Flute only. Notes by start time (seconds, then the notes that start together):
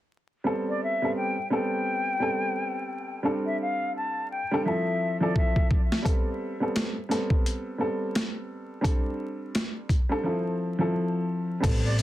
0.69 D5
0.84 E5
1.16 G5
1.52 G5
3.46 E5
3.61 F5
3.96 A5
4.31 G5
4.65 E5
5.22 D5
5.37 E5
11.85 D5